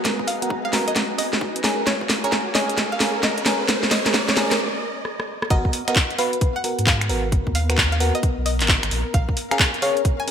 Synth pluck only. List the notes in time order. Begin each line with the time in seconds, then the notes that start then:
0.27 F5
0.65 F5
0.88 D#5
1.18 D#5
1.87 C#5
2.24 C#5
2.55 D#5
2.92 F5
3.23 D#5
3.91 D#5
4.29 C#5
4.51 A#4
5.50 D#5
5.88 D#5
6.19 F5
6.56 F#5
6.87 F5
7.55 F5
7.92 F5
8.15 D#5
8.46 D#5
9.14 F5
9.51 F5
9.82 F5
10.20 G#5